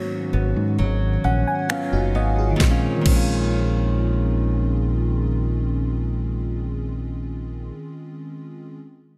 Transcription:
0, 0, Header, 1, 5, 480
1, 0, Start_track
1, 0, Key_signature, -5, "minor"
1, 0, Tempo, 909091
1, 1374, Time_signature, 4, 2, 24, 8
1, 4846, End_track
2, 0, Start_track
2, 0, Title_t, "FM electric piano"
2, 0, Program_c, 0, 5
2, 0, Control_c, 0, 64, 127
2, 0, Note_on_c, 0, 51, 72
2, 0, Note_on_c, 0, 58, 64
2, 0, Note_on_c, 0, 59, 66
2, 0, Note_on_c, 0, 61, 68
2, 0, Note_on_c, 0, 66, 79
2, 658, Note_on_c, 0, 78, 67
2, 768, Note_off_c, 0, 78, 0
2, 778, Note_on_c, 0, 80, 64
2, 881, Note_off_c, 0, 61, 0
2, 888, Note_off_c, 0, 66, 0
2, 888, Note_off_c, 0, 80, 0
2, 898, Note_on_c, 0, 65, 58
2, 899, Note_on_c, 0, 77, 68
2, 902, Note_on_c, 0, 61, 51
2, 1010, Note_off_c, 0, 65, 0
2, 1012, Note_off_c, 0, 61, 0
2, 1018, Note_on_c, 0, 66, 72
2, 1021, Note_on_c, 0, 63, 56
2, 1120, Note_off_c, 0, 77, 0
2, 1139, Note_on_c, 0, 75, 67
2, 1244, Note_off_c, 0, 66, 0
2, 1246, Note_off_c, 0, 63, 0
2, 1258, Note_on_c, 0, 68, 58
2, 1262, Note_on_c, 0, 65, 51
2, 1319, Note_off_c, 0, 51, 0
2, 1325, Note_on_c, 0, 51, 74
2, 1348, Note_off_c, 0, 58, 0
2, 1352, Note_on_c, 0, 56, 65
2, 1355, Note_off_c, 0, 59, 0
2, 1360, Note_off_c, 0, 75, 0
2, 1378, Note_on_c, 0, 60, 69
2, 1381, Control_c, 0, 64, 0
2, 1405, Note_on_c, 0, 61, 65
2, 1424, Note_off_c, 0, 65, 0
2, 1430, Note_on_c, 0, 65, 79
2, 1458, Control_c, 0, 64, 127
2, 1482, Note_off_c, 0, 51, 0
2, 1484, Note_off_c, 0, 68, 0
2, 1496, Note_off_c, 0, 56, 0
2, 1510, Note_off_c, 0, 60, 0
2, 1524, Note_off_c, 0, 61, 0
2, 1538, Note_off_c, 0, 65, 0
2, 1565, Note_on_c, 0, 51, 75
2, 1591, Note_on_c, 0, 56, 73
2, 1617, Note_on_c, 0, 60, 66
2, 1644, Note_on_c, 0, 61, 73
2, 1670, Note_on_c, 0, 65, 78
2, 4040, Note_off_c, 0, 51, 0
2, 4053, Note_off_c, 0, 56, 0
2, 4067, Note_off_c, 0, 60, 0
2, 4080, Note_off_c, 0, 61, 0
2, 4093, Note_off_c, 0, 65, 0
2, 4621, Control_c, 0, 64, 0
2, 4846, End_track
3, 0, Start_track
3, 0, Title_t, "Nylon-string guitar"
3, 0, Program_c, 1, 24
3, 0, Note_on_c, 1, 44, 84
3, 0, Note_on_c, 1, 54, 62
3, 0, Note_on_c, 1, 61, 69
3, 174, Note_on_c, 1, 59, 57
3, 408, Note_off_c, 1, 54, 0
3, 414, Note_on_c, 1, 54, 61
3, 653, Note_off_c, 1, 61, 0
3, 655, Note_on_c, 1, 61, 61
3, 887, Note_off_c, 1, 54, 0
3, 891, Note_off_c, 1, 59, 0
3, 893, Note_on_c, 1, 54, 58
3, 897, Note_on_c, 1, 59, 58
3, 898, Note_off_c, 1, 61, 0
3, 900, Note_on_c, 1, 61, 66
3, 1128, Note_off_c, 1, 59, 0
3, 1134, Note_on_c, 1, 59, 58
3, 1352, Note_on_c, 1, 46, 73
3, 1374, Note_off_c, 1, 44, 0
3, 1379, Note_off_c, 1, 54, 0
3, 1381, Note_on_c, 1, 51, 83
3, 1402, Note_off_c, 1, 59, 0
3, 1404, Note_on_c, 1, 56, 82
3, 1423, Note_off_c, 1, 61, 0
3, 1425, Note_on_c, 1, 61, 85
3, 1589, Note_off_c, 1, 46, 0
3, 1591, Note_on_c, 1, 46, 72
3, 1607, Note_off_c, 1, 56, 0
3, 1619, Note_off_c, 1, 51, 0
3, 1621, Note_on_c, 1, 51, 86
3, 1637, Note_off_c, 1, 61, 0
3, 1644, Note_on_c, 1, 56, 81
3, 1665, Note_on_c, 1, 61, 88
3, 4075, Note_off_c, 1, 46, 0
3, 4090, Note_off_c, 1, 51, 0
3, 4101, Note_off_c, 1, 56, 0
3, 4112, Note_off_c, 1, 61, 0
3, 4846, End_track
4, 0, Start_track
4, 0, Title_t, "Fingered electric bass"
4, 0, Program_c, 2, 33
4, 177, Note_on_c, 2, 32, 80
4, 275, Note_off_c, 2, 32, 0
4, 297, Note_on_c, 2, 44, 81
4, 418, Note_on_c, 2, 32, 98
4, 426, Note_off_c, 2, 44, 0
4, 614, Note_off_c, 2, 32, 0
4, 657, Note_on_c, 2, 34, 83
4, 755, Note_off_c, 2, 34, 0
4, 1018, Note_on_c, 2, 30, 84
4, 1137, Note_off_c, 2, 30, 0
4, 1137, Note_on_c, 2, 32, 86
4, 1334, Note_off_c, 2, 32, 0
4, 1375, Note_on_c, 2, 34, 92
4, 1509, Note_off_c, 2, 34, 0
4, 1615, Note_on_c, 2, 34, 88
4, 4065, Note_off_c, 2, 34, 0
4, 4846, End_track
5, 0, Start_track
5, 0, Title_t, "Drums"
5, 897, Note_on_c, 9, 26, 100
5, 950, Note_off_c, 9, 26, 0
5, 1374, Note_on_c, 9, 36, 99
5, 1377, Note_on_c, 9, 38, 84
5, 1427, Note_off_c, 9, 36, 0
5, 1430, Note_off_c, 9, 38, 0
5, 1614, Note_on_c, 9, 36, 100
5, 1614, Note_on_c, 9, 49, 75
5, 1667, Note_off_c, 9, 36, 0
5, 1667, Note_off_c, 9, 49, 0
5, 4846, End_track
0, 0, End_of_file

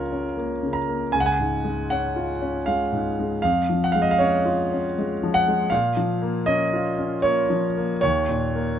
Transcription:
0, 0, Header, 1, 2, 480
1, 0, Start_track
1, 0, Tempo, 765306
1, 707, Time_signature, 3, 2, 24, 8
1, 4542, Tempo, 781250
1, 5495, End_track
2, 0, Start_track
2, 0, Title_t, "Grand piano"
2, 0, Program_c, 0, 0
2, 0, Control_c, 0, 64, 127
2, 0, Note_on_c, 0, 37, 47
2, 0, Note_on_c, 0, 49, 35
2, 0, Note_on_c, 0, 58, 40
2, 0, Note_on_c, 0, 61, 42
2, 0, Note_on_c, 0, 65, 42
2, 0, Note_on_c, 0, 70, 66
2, 0, Note_on_c, 0, 73, 65
2, 74, Note_off_c, 0, 61, 0
2, 74, Note_on_c, 0, 61, 39
2, 161, Note_off_c, 0, 65, 0
2, 223, Note_off_c, 0, 70, 0
2, 232, Note_off_c, 0, 58, 0
2, 232, Note_on_c, 0, 58, 38
2, 326, Note_off_c, 0, 61, 0
2, 394, Note_off_c, 0, 49, 0
2, 394, Note_on_c, 0, 49, 41
2, 458, Note_on_c, 0, 82, 74
2, 486, Note_off_c, 0, 58, 0
2, 551, Note_on_c, 0, 58, 39
2, 648, Note_off_c, 0, 49, 0
2, 683, Note_off_c, 0, 37, 0
2, 703, Note_off_c, 0, 82, 0
2, 704, Note_on_c, 0, 80, 77
2, 710, Note_off_c, 0, 58, 0
2, 710, Note_on_c, 0, 37, 51
2, 719, Control_c, 0, 64, 0
2, 721, Note_off_c, 0, 73, 0
2, 750, Note_off_c, 0, 80, 0
2, 754, Note_on_c, 0, 78, 69
2, 790, Note_on_c, 0, 80, 76
2, 798, Note_off_c, 0, 78, 0
2, 809, Control_c, 0, 64, 127
2, 875, Note_on_c, 0, 44, 38
2, 1032, Note_on_c, 0, 56, 43
2, 1125, Note_off_c, 0, 44, 0
2, 1181, Note_off_c, 0, 80, 0
2, 1193, Note_on_c, 0, 78, 72
2, 1203, Note_on_c, 0, 61, 42
2, 1283, Note_off_c, 0, 56, 0
2, 1356, Note_on_c, 0, 65, 43
2, 1448, Note_off_c, 0, 61, 0
2, 1516, Note_on_c, 0, 61, 47
2, 1603, Note_off_c, 0, 65, 0
2, 1664, Note_off_c, 0, 78, 0
2, 1667, Note_on_c, 0, 77, 73
2, 1678, Note_on_c, 0, 56, 43
2, 1762, Note_off_c, 0, 61, 0
2, 1835, Note_on_c, 0, 44, 42
2, 1924, Note_off_c, 0, 56, 0
2, 2002, Note_on_c, 0, 56, 42
2, 2084, Note_off_c, 0, 44, 0
2, 2117, Note_off_c, 0, 37, 0
2, 2136, Note_off_c, 0, 77, 0
2, 2145, Note_on_c, 0, 77, 78
2, 2152, Note_off_c, 0, 56, 0
2, 2153, Control_c, 0, 64, 0
2, 2156, Note_on_c, 0, 41, 58
2, 2253, Control_c, 0, 64, 127
2, 2318, Note_on_c, 0, 53, 42
2, 2390, Note_off_c, 0, 77, 0
2, 2408, Note_on_c, 0, 78, 72
2, 2456, Note_off_c, 0, 78, 0
2, 2458, Note_on_c, 0, 77, 73
2, 2479, Note_on_c, 0, 56, 45
2, 2510, Note_off_c, 0, 77, 0
2, 2520, Note_on_c, 0, 75, 70
2, 2565, Note_off_c, 0, 53, 0
2, 2570, Note_off_c, 0, 75, 0
2, 2578, Note_on_c, 0, 77, 73
2, 2625, Note_on_c, 0, 73, 72
2, 2628, Note_off_c, 0, 77, 0
2, 2634, Note_on_c, 0, 61, 52
2, 2726, Note_off_c, 0, 56, 0
2, 2795, Note_on_c, 0, 65, 47
2, 2886, Note_off_c, 0, 61, 0
2, 2964, Note_on_c, 0, 61, 46
2, 3047, Note_off_c, 0, 65, 0
2, 3107, Note_off_c, 0, 73, 0
2, 3126, Note_on_c, 0, 56, 47
2, 3211, Note_off_c, 0, 61, 0
2, 3283, Note_on_c, 0, 53, 49
2, 3350, Note_on_c, 0, 78, 88
2, 3371, Note_off_c, 0, 56, 0
2, 3439, Note_on_c, 0, 56, 45
2, 3528, Note_off_c, 0, 53, 0
2, 3565, Note_off_c, 0, 41, 0
2, 3573, Note_on_c, 0, 77, 76
2, 3585, Note_off_c, 0, 78, 0
2, 3586, Note_on_c, 0, 46, 60
2, 3590, Note_off_c, 0, 56, 0
2, 3595, Control_c, 0, 64, 0
2, 3705, Control_c, 0, 64, 127
2, 3743, Note_on_c, 0, 53, 45
2, 3900, Note_on_c, 0, 58, 50
2, 3997, Note_off_c, 0, 53, 0
2, 4052, Note_on_c, 0, 75, 92
2, 4055, Note_off_c, 0, 77, 0
2, 4061, Note_on_c, 0, 61, 56
2, 4156, Note_off_c, 0, 58, 0
2, 4223, Note_on_c, 0, 65, 53
2, 4316, Note_off_c, 0, 61, 0
2, 4381, Note_on_c, 0, 61, 48
2, 4478, Note_off_c, 0, 65, 0
2, 4530, Note_on_c, 0, 73, 87
2, 4537, Note_off_c, 0, 75, 0
2, 4540, Note_on_c, 0, 58, 48
2, 4637, Note_off_c, 0, 61, 0
2, 4701, Note_on_c, 0, 53, 46
2, 4795, Note_off_c, 0, 58, 0
2, 4869, Note_on_c, 0, 58, 47
2, 4956, Note_off_c, 0, 53, 0
2, 4996, Note_off_c, 0, 46, 0
2, 5005, Note_off_c, 0, 73, 0
2, 5015, Note_on_c, 0, 73, 91
2, 5024, Note_off_c, 0, 58, 0
2, 5029, Note_on_c, 0, 39, 64
2, 5030, Control_c, 0, 64, 0
2, 5143, Control_c, 0, 64, 127
2, 5185, Note_on_c, 0, 46, 45
2, 5346, Note_on_c, 0, 58, 49
2, 5440, Note_off_c, 0, 46, 0
2, 5495, Note_off_c, 0, 39, 0
2, 5495, Note_off_c, 0, 58, 0
2, 5495, Note_off_c, 0, 73, 0
2, 5495, End_track
0, 0, End_of_file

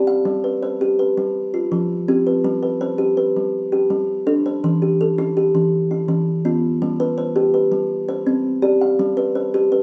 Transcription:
0, 0, Header, 1, 2, 480
1, 0, Start_track
1, 0, Tempo, 364299
1, 343, Time_signature, 12, 3, 24, 8
1, 12951, End_track
2, 0, Start_track
2, 0, Title_t, "Kalimba"
2, 0, Program_c, 0, 108
2, 0, Note_on_c, 0, 67, 79
2, 0, Note_on_c, 0, 74, 67
2, 97, Note_on_c, 0, 77, 65
2, 334, Note_on_c, 0, 55, 82
2, 343, Note_off_c, 0, 67, 0
2, 581, Note_on_c, 0, 71, 63
2, 582, Note_off_c, 0, 77, 0
2, 584, Note_off_c, 0, 74, 0
2, 821, Note_off_c, 0, 55, 0
2, 825, Note_on_c, 0, 72, 69
2, 1069, Note_on_c, 0, 67, 72
2, 1292, Note_off_c, 0, 71, 0
2, 1308, Note_on_c, 0, 71, 66
2, 1549, Note_off_c, 0, 72, 0
2, 1549, Note_on_c, 0, 55, 73
2, 1550, Note_off_c, 0, 67, 0
2, 1790, Note_off_c, 0, 55, 0
2, 2027, Note_on_c, 0, 65, 65
2, 2031, Note_off_c, 0, 71, 0
2, 2263, Note_on_c, 0, 53, 80
2, 2746, Note_on_c, 0, 60, 80
2, 2747, Note_on_c, 0, 67, 67
2, 2749, Note_off_c, 0, 53, 0
2, 2751, Note_off_c, 0, 65, 0
2, 2986, Note_on_c, 0, 71, 64
2, 3221, Note_on_c, 0, 55, 86
2, 3231, Note_off_c, 0, 60, 0
2, 3444, Note_off_c, 0, 71, 0
2, 3460, Note_on_c, 0, 71, 66
2, 3472, Note_off_c, 0, 67, 0
2, 3702, Note_on_c, 0, 72, 74
2, 3709, Note_off_c, 0, 55, 0
2, 3930, Note_on_c, 0, 67, 73
2, 4164, Note_off_c, 0, 71, 0
2, 4180, Note_on_c, 0, 71, 69
2, 4423, Note_off_c, 0, 67, 0
2, 4429, Note_off_c, 0, 72, 0
2, 4433, Note_on_c, 0, 55, 73
2, 4905, Note_on_c, 0, 67, 72
2, 4908, Note_off_c, 0, 71, 0
2, 4915, Note_off_c, 0, 55, 0
2, 5144, Note_on_c, 0, 55, 81
2, 5622, Note_on_c, 0, 69, 66
2, 5625, Note_on_c, 0, 62, 83
2, 5629, Note_off_c, 0, 55, 0
2, 5630, Note_off_c, 0, 67, 0
2, 5874, Note_on_c, 0, 72, 68
2, 6109, Note_off_c, 0, 62, 0
2, 6114, Note_on_c, 0, 52, 94
2, 6348, Note_off_c, 0, 69, 0
2, 6352, Note_on_c, 0, 67, 64
2, 6354, Note_off_c, 0, 72, 0
2, 6593, Note_off_c, 0, 52, 0
2, 6598, Note_on_c, 0, 69, 68
2, 6831, Note_on_c, 0, 64, 84
2, 7057, Note_off_c, 0, 67, 0
2, 7073, Note_on_c, 0, 67, 70
2, 7310, Note_on_c, 0, 52, 81
2, 7311, Note_off_c, 0, 64, 0
2, 7314, Note_off_c, 0, 69, 0
2, 7786, Note_on_c, 0, 64, 65
2, 7790, Note_off_c, 0, 52, 0
2, 7791, Note_off_c, 0, 67, 0
2, 8017, Note_on_c, 0, 52, 86
2, 8498, Note_on_c, 0, 65, 66
2, 8502, Note_off_c, 0, 52, 0
2, 8502, Note_on_c, 0, 59, 82
2, 8506, Note_off_c, 0, 64, 0
2, 8984, Note_off_c, 0, 59, 0
2, 8985, Note_on_c, 0, 55, 91
2, 9221, Note_off_c, 0, 65, 0
2, 9222, Note_on_c, 0, 71, 74
2, 9457, Note_on_c, 0, 72, 72
2, 9465, Note_off_c, 0, 55, 0
2, 9694, Note_on_c, 0, 67, 84
2, 9918, Note_off_c, 0, 71, 0
2, 9933, Note_on_c, 0, 71, 67
2, 10168, Note_on_c, 0, 55, 81
2, 10178, Note_off_c, 0, 67, 0
2, 10179, Note_off_c, 0, 72, 0
2, 10415, Note_off_c, 0, 55, 0
2, 10654, Note_on_c, 0, 72, 71
2, 10657, Note_off_c, 0, 71, 0
2, 10891, Note_on_c, 0, 60, 81
2, 11362, Note_on_c, 0, 67, 84
2, 11364, Note_on_c, 0, 74, 70
2, 11376, Note_off_c, 0, 60, 0
2, 11377, Note_off_c, 0, 72, 0
2, 11613, Note_on_c, 0, 77, 68
2, 11851, Note_off_c, 0, 67, 0
2, 11851, Note_on_c, 0, 55, 93
2, 12083, Note_on_c, 0, 71, 74
2, 12091, Note_off_c, 0, 74, 0
2, 12096, Note_off_c, 0, 77, 0
2, 12325, Note_on_c, 0, 72, 70
2, 12335, Note_off_c, 0, 55, 0
2, 12573, Note_on_c, 0, 67, 77
2, 12790, Note_off_c, 0, 71, 0
2, 12806, Note_on_c, 0, 71, 71
2, 12951, Note_off_c, 0, 67, 0
2, 12951, Note_off_c, 0, 71, 0
2, 12951, Note_off_c, 0, 72, 0
2, 12951, End_track
0, 0, End_of_file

